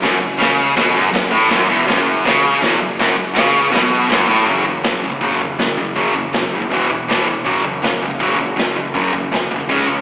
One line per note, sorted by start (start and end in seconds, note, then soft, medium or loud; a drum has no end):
0.02 0.21 F#1 medium
0.02 0.19 F#2 loud
0.02 kick medium
0.02 snare medium
0.02 open hi-hat medium
0.21 0.39 F#1 medium
0.21 0.36 F#2 medium
0.38 0.75 C#2 medium
0.38 0.76 C#3 loud
0.38 kick loud
0.38 snare loud
0.38 open hi-hat medium
0.76 0.94 B1 loud
0.76 0.95 B2 loud
0.76 kick loud
0.76 snare loud
0.76 open hi-hat medium
0.94 1.13 F#1 loud
0.94 1.11 F#2 loud
1.12 1.31 F#1 medium
1.12 1.28 F#2 medium
1.12 kick loud
1.12 snare loud
1.12 open hi-hat medium
1.30 1.50 A1 medium
1.30 1.50 A2 loud
1.50 1.68 F#1 medium
1.50 1.69 F#2 loud
1.50 kick loud
1.50 snare loud
1.50 open hi-hat medium
1.69 1.87 E1 loud
1.69 1.87 E2 loud
1.87 2.23 F#1 loud
1.87 2.24 F#2 loud
1.87 kick loud
1.87 snare loud
1.87 open hi-hat medium
2.25 2.60 C#2 loud
2.25 2.62 C#3 loud
2.25 kick loud
2.25 snare loud
2.25 open hi-hat medium
2.61 2.80 E1 medium
2.61 2.80 E2 loud
2.61 kick loud
2.61 snare loud
2.61 open hi-hat medium
2.81 2.98 F#1 medium
2.81 2.96 F#2 medium
2.99 3.17 F#1 medium
2.99 3.17 F#2 loud
2.99 kick medium
2.99 snare medium
2.99 open hi-hat medium
3.17 3.35 F#1 medium
3.17 3.33 F#2 medium
3.34 3.71 C#2 loud
3.34 3.71 C#3 loud
3.34 kick loud
3.34 snare loud
3.34 open hi-hat medium
3.71 4.08 B1 loud
3.71 4.09 B2 loud
3.71 kick loud
3.71 open hi-hat medium
3.76 snare loud
4.08 4.27 F#1 medium
4.08 4.27 F#2 loud
4.08 kick loud
4.08 open hi-hat medium
4.12 snare loud
4.27 4.46 A1 medium
4.27 4.46 A2 loud
4.46 4.72 F#1 medium
4.46 4.64 F#2 medium
4.46 4.65 C#3 medium
4.46 4.66 F#3 loud
4.46 kick medium
4.46 floor tom medium
4.66 4.83 F#2 medium
4.66 4.83 C#3 medium
4.66 floor tom medium
4.83 4.97 B1 loud
4.83 5.01 F#2 medium
4.83 5.02 C#3 medium
4.83 snare loud
4.83 floor tom medium
5.02 5.16 C#2 medium
5.02 5.20 F#2 medium
5.02 5.20 C#3 medium
5.02 floor tom soft
5.12 kick medium
5.21 5.47 A#1 medium
5.21 5.39 F#2 medium
5.21 5.39 C#3 medium
5.21 5.40 F#3 loud
5.21 kick medium
5.21 floor tom medium
5.40 5.58 F#2 medium
5.40 5.58 C#3 medium
5.40 floor tom medium
5.58 5.84 F#1 medium
5.58 5.76 F#2 medium
5.58 5.77 C#3 medium
5.58 snare loud
5.58 floor tom medium
5.77 5.95 F#2 medium
5.77 5.95 C#3 medium
5.77 floor tom medium
5.96 6.22 F#1 medium
5.96 6.13 F#2 loud
5.96 6.14 C#3 loud
5.96 6.15 F#3 loud
5.96 kick medium
5.96 floor tom medium
6.14 6.32 F#2 medium
6.14 6.32 C#3 medium
6.14 floor tom medium
6.33 6.46 B1 medium
6.33 6.51 F#2 medium
6.33 6.51 C#3 medium
6.33 snare loud
6.33 floor tom medium
6.52 6.65 C#2 medium
6.52 6.69 F#2 medium
6.52 6.70 C#3 medium
6.52 floor tom medium
6.62 kick medium
6.70 6.97 E1 medium
6.70 6.88 E2 medium
6.70 6.89 B2 medium
6.70 6.89 E3 medium
6.70 kick medium
6.70 floor tom medium
6.90 7.07 E2 medium
6.90 7.07 B2 medium
6.90 floor tom medium
7.08 7.34 E1 medium
7.08 7.26 E2 medium
7.08 7.26 B2 loud
7.08 7.26 E3 medium
7.08 snare loud
7.08 floor tom medium
7.27 7.44 E2 medium
7.27 7.44 B2 medium
7.27 floor tom medium
7.45 7.71 F#1 medium
7.45 7.63 F#2 medium
7.45 7.63 C#3 loud
7.45 7.63 F#3 loud
7.45 kick medium
7.45 floor tom medium
7.64 7.81 F#2 medium
7.64 7.82 C#3 medium
7.64 floor tom medium
7.83 7.96 B1 medium
7.83 8.00 F#2 medium
7.83 8.00 C#3 medium
7.83 snare loud
7.83 floor tom medium
8.02 8.15 C#2 medium
8.02 8.18 F#2 medium
8.02 8.19 C#3 medium
8.02 floor tom soft
8.11 kick medium
8.19 8.45 A#1 medium
8.19 8.36 F#2 medium
8.19 8.37 C#3 medium
8.19 8.38 F#3 medium
8.19 kick medium
8.19 floor tom medium
8.38 8.55 F#2 medium
8.38 8.55 C#3 medium
8.38 floor tom medium
8.56 8.83 F#1 medium
8.56 8.74 F#2 medium
8.56 8.74 C#3 medium
8.56 snare loud
8.56 floor tom medium
8.76 8.93 F#2 medium
8.76 8.93 C#3 medium
8.76 floor tom medium
8.94 9.21 F#1 medium
8.94 9.12 F#2 loud
8.94 9.12 C#3 loud
8.94 9.13 F#3 loud
8.94 kick medium
8.94 floor tom medium
9.13 9.30 F#2 medium
9.13 9.30 C#3 medium
9.13 kick medium
9.13 floor tom medium
9.32 9.45 B1 medium
9.32 9.49 F#2 medium
9.32 9.49 C#3 medium
9.32 snare loud
9.32 floor tom medium
9.51 9.63 C#2 medium
9.51 9.68 F#2 medium
9.51 9.68 C#3 medium
9.51 floor tom medium
9.60 kick medium
9.69 9.95 C#2 loud
9.69 9.87 C#3 medium
9.69 9.87 G#3 medium
9.69 9.88 C#4 medium
9.69 kick medium
9.69 floor tom medium
9.88 10.01 C#3 medium
9.88 10.01 G#3 medium
9.88 floor tom soft